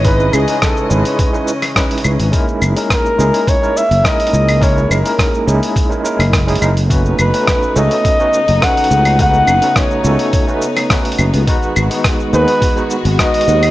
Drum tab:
HH |o-----o-o-----o-o-----o-o-oo--o-|o-----o-o-----o-o-----o-o-oo--o-|o-----o-o-----o-o-----o-o-oo--o-|o-----o-o-----o-o-----o-o-oo--o-|
SH |x-x-x-x-x-x-x-x-x-x-x-x-x-x-x-x-|x-x-x-x-x-x-x-x-x-x-x-x-x-x-x-x-|x-x-x-x-x-x-x-x-x-x-x-x-x-x-x-x-|x-x-x-x-x-x-x-x-x-x-x-x-x-x-x-x-|
CL |----x-----------------x-----x---|----x-------------------------x-|----x-----------------x-----x---|----x-------------------------x-|
SD |--------r-------------r-r-------|--------r---------------r-------|--------r-------------r-r-------|--------r---------------r-------|
BD |o-------o-------o-------o-------|o-------o-------o-------o-------|o-------o-------o-------o-------|o-------o-------o-------o-------|

HH |o-----o-o-----o-o-----o-o-oo--o-|o-----o-o-----o-o-----o-o-oo--o-|
SH |x-x-x-x-x-x-x-x-x-x-x-x-x-x-x-x-|x-x-x-x-x-x-x-x-x-x-x-x-x-x-x-x-|
CL |----x-----------------x-----x---|----x-------------------------x-|
SD |--------r-------------r-r-------|--------r---------------r-------|
BD |o-------o-------o-------o-------|o-------o-------o-------o-------|